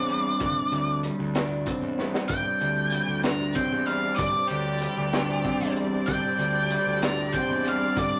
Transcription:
Already playing: E2 G2 C4 D4 D5
0.08 G3, closed hi-hat
0.40 G1 G2, kick, closed hi-hat, tambourine
0.71 D2, closed hi-hat, tambourine
0.88 tambourine
1.03 G3, closed hi-hat, tambourine
1.19 D2, tambourine
1.35 D4, snare, closed hi-hat
1.50 tambourine
1.66 C4, kick, closed hi-hat, tambourine
1.81 E2, tambourine
1.98 G3, snare
2.14 snare
2.28 G1 G2 C4 D4 G4 C5 D5 G5, kick, closed hi-hat, tambourine
2.60 D2, closed hi-hat, tambourine
2.76 tambourine
2.90 G3, closed hi-hat, tambourine
3.07 D2, tambourine
3.23 D4 A#5, snare, closed hi-hat
3.53 C4 G5, kick, closed hi-hat, tambourine
3.72 E2
3.87 G3 F5, closed hi-hat
4.16 G1 G2 D5, kick, closed hi-hat, tambourine
4.48 D2 G4, closed hi-hat, tambourine
4.63 tambourine
4.78 G3, tambourine
4.82 closed hi-hat
4.94 D2, tambourine
5.13 D4, snare, closed hi-hat
5.43 C4, kick, closed hi-hat
5.60 E2
5.76 G3, closed hi-hat
6.06 G1 G2 G5, kick, closed hi-hat, tambourine
6.38 D2, closed hi-hat, tambourine
6.54 tambourine
6.70 G3, closed hi-hat, tambourine
6.86 D2, tambourine
7.02 D4 A#5, snare, closed hi-hat
7.33 C4 G5, kick, closed hi-hat, tambourine
7.49 E2
7.65 G3 F5, closed hi-hat
7.96 G1 G2 D5, kick, closed hi-hat, tambourine

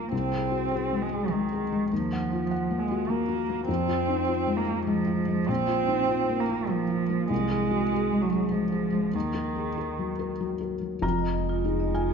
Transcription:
Already playing: A#1 A#3 D#4 F4
0.12 C2 C4
0.32 G#4
0.51 F#4
0.72 G#4
0.92 G#3
1.02 G#3
1.13 G#4
1.31 D#3 G#3
1.52 G#4
1.72 G#3
1.91 D#2 F3
2.13 F#5
2.33 F4
2.51 F#5
2.71 A#3
2.79 G#3
2.91 F#4
3.09 A#3
3.29 F#4
3.49 A#3
3.68 F2 C4
3.88 F4
4.08 D#4
4.28 F4
4.47 G#3
4.57 A#3
4.67 F4
4.86 F3 G#3
5.07 F4
5.28 G#3
5.48 A#1 C4
5.67 F4
5.88 D#4
6.09 F4
6.29 A#3
6.40 A#3
6.49 F4
6.69 F3 A#3
6.90 F4
7.10 A#3
7.29 C2 G#3
7.50 G#4
7.71 F#4
7.92 G#4
8.12 G#3
8.21 F#3
8.32 G#4
8.51 F3 G#3
8.72 G#4
8.92 G#3
9.13 D#2 D#3
9.34 A#4
9.56 G#4
9.78 A#4
9.99 F#3
10.19 A#4
10.40 F#3
10.61 A#4
10.81 F#3
11.02 F1 F2 G#3 F4 A#5
11.18 D#5
11.34 D#5
11.49 F4
11.64 F3 D#4 G#4
11.80 D#5
11.95 F4 G#5
12.10 G#4

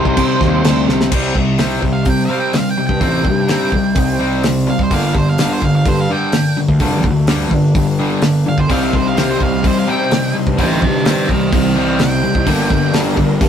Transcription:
Already playing: C3 G3 C4 D#4 G4 C5
0.05 C2, kick
0.17 C3 G3 D#4 G4 C5, kick, crash
0.39 D#2 G3 C4 D#4 G4 C5, kick, snare
0.63 D2 C3 G3 C4 D#4 G4 C5, snare, crash
0.87 C2 D#4 G4 C5, snare
1.01 snare
1.11 C2 C3 G3 C4 D#4 G4, kick, crash
1.35 C2 C3 G3 C4 D#4 G4, kick
1.58 C3 G3 C4 D#4 G4, snare, open hi-hat
1.82 C2 C3 G3, kick
1.93 F5
2.05 C3 G3 C4 D#4 G4, kick, open hi-hat
2.09 G5
2.25 F5
2.30 C3 G3 C4
2.40 G5
2.53 C3 G3 C4 D#4 G4 F5, snare, open hi-hat
2.71 G5
2.77 C3 G3
2.87 G2 G5, kick
3.00 A1 C3 G3 C4 D#4 G4, kick, open hi-hat
3.24 G2 C3 G3 C4 D#4 G4, kick
3.48 C3 G3 C4 D#4 G4, snare, open hi-hat
3.71 C2 C3 G3 C4 D#4 G4, kick
3.96 C2 C3 G3 C4 D#4 G4, kick, open hi-hat
4.20 C3 G3 C4
4.42 C3 G3 C4 D#4 G4, snare, open hi-hat
4.67 C3 G3 C4 D#4 G4 F5
4.79 C2, kick
4.83 C5
4.90 G1 G2 D3 G3 A#3 D4 G4 F5, kick, open hi-hat
5.04 F5
5.14 G1 G2 D3 G3 A#3 D4 G4 C5, kick
5.29 F5
5.38 G2 D3 G3 A#3 D4 G4 F5, snare, open hi-hat
5.53 C5
5.62 G1 G2 D3 G3 A#3 D4 G4 F5, kick
5.76 F5
5.85 G2 D3 G3 A#3 D4 G4 C5, kick, open hi-hat
6.01 F5
6.09 G2 D3 G3 G5
6.32 G2 D3 G3 A#3 D4 G4, snare, open hi-hat
6.56 G2 D3 G3 A#3 D4 G4
6.68 D2, kick
6.79 F1 G2 D3 G3 A#3 D4 G4, kick, open hi-hat
7.03 D2 G2 D3 G3 A#3 D4 G4, kick
7.27 G2 D3 G3 A#3 D4 G4, snare, open hi-hat
7.51 G1 G2 D3 G3 A#3 D4 G4, kick
7.75 G1 G2 D3 G3 A#3 D4 G4, kick, open hi-hat
7.98 G2 D3 G3
8.22 G2 D3 G3 A#3 D4 G4, snare, open hi-hat
8.46 G2 D3 G3 A#3 D4 G4 F5
8.58 G1 C5, kick
8.69 C2 C3 G3 C4 D#4 G4 C5 F5, kick, open hi-hat
8.84 F5
8.93 C2 C3 G3 C4 D#4 G4 C5, kick
9.08 F5
9.16 C3 G3 C4 D#4 G4 F5, snare, open hi-hat
9.31 C5
9.40 C2 C3 G3 C4 D#4 G4 F5, kick
9.54 F5
9.64 C3 G3 C4 D#4 G4 C5, kick, open hi-hat
9.79 F5
9.88 C3 G3 C4 G5
10.10 C3 G3 C4 D#4 G4, snare, open hi-hat
10.34 C3 G3 C4 D#4 G4
10.47 G2, kick
10.58 A1 C3 G3 C4 D#4 G4 G5 A#5, kick, open hi-hat
10.81 G2 C3 G3 C4 D#4 G4 G5 A#5, kick
11.04 C3 G3 C4 D#4 G4 G5 A#5, snare, open hi-hat
11.29 C2 C3 G3 D#5 G5, kick
11.52 C2 C3 G3 C4 D#4 G4 D#5 G5, kick, open hi-hat
11.76 C3 G3 C4 D#5 G5
11.99 C3 G3 C4 G5, snare, open hi-hat
12.23 C3 G3 C4 D#4 G4
12.35 C2, kick
12.46 G1 G2 D3 G3 A#3 D4 G4 A#4, kick, open hi-hat
12.69 G1 G2 D3 G3 A#3 D4 G4, kick
12.94 G2 D3 G3 A#3 D4 G4, snare, open hi-hat
13.17 G1 G2 D3, kick
13.41 G2 D3 G3 A#3 D4 G4, kick, open hi-hat

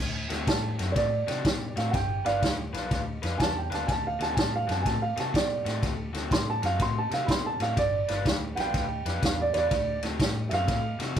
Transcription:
0.00 D2
0.29 D2 D3 A3 C4 F#4, snare, ride
0.47 A2 A5, kick, snare, ride
0.79 F#2 D3 A3 C4 F#4, snare, ride
0.92 A2 C#5, kick, ride
0.97 D5, snare
1.27 C3 D3 A3 C4 F#4, snare, ride
1.45 B2, kick, snare, ride
1.76 A2 D3 A3 C4 F#4 F5, snare, ride
1.90 G1 F#5, kick, ride
1.95 G5, snare
2.25 G1 G3 D4 F4 B4 D5 F5, snare, ride
2.42 D2, kick, snare, ride
2.73 B1 G3 D4 F4 B4, snare, ride
2.91 D2, kick, snare, ride
3.22 F2 G3 D4 F4 B4, snare, ride
3.38 E2 G#5, kick, snare, ride
3.42 A5
3.58 G5
3.70 D2 G3 D4 F4 B4, snare, ride
3.74 A5
3.87 D2 G#5, kick, snare, ride
3.92 A5
4.07 F5
4.19 D2 D3 A3 C4 F#4 A5, snare, ride
4.34 A2 G#5, kick, ride
4.39 A5, snare
4.56 F5
4.67 F#2 D3 A3 C4 F#4 A5, snare, ride
4.82 A2 G#5, kick, ride
4.86 A5, snare
5.02 F5
5.16 C3 D3 A3 C4 F#4 A5, snare, ride
5.34 B2 D5, kick, snare, ride
5.65 A2 D3 A3 C4 F#4, snare, ride
5.83 D2, kick, snare, ride
6.13 D2 D3 A3 C4 F#4, snare, ride
6.31 A2 C6, kick, snare, ride
6.50 A5
6.62 F#2 D3 A3 C4 F#4 F5, snare, ride
6.79 A2 C6, kick, snare, ride
6.98 A5
7.11 C3 D3 A3 C4 F#4 F5, snare, ride
7.27 B2 B5, kick, snare, ride
7.31 C6
7.46 A5
7.59 A2 D3 A3 C4 F#4 F5, snare, ride
7.77 G1 D5, kick, snare, ride
8.08 G1 G3 D4 F4 B4, snare, ride
8.25 D2, kick, snare, ride
8.55 B1 G3 D4 F4 B4 F#5, snare, ride
8.60 G5
8.74 D2, kick, snare, ride
9.05 F2 G3 D4 F4 B4, snare, ride
9.23 E2 F5, kick, snare, ride
9.42 D5
9.54 E2 G3 D4 F4 B4 C#5, snare, ride
9.58 D5
9.71 D2, kick, snare, ride
10.03 D2 D3 A3 C4 F#4, snare, ride
10.20 A2, kick, snare, ride
10.49 F#2 D3 A3 C4 F#4 E5, snare, ride
10.54 F5
10.68 A2, kick, snare, ride
10.99 C3 D3 A3 C4 F#4, snare, ride
11.16 ride

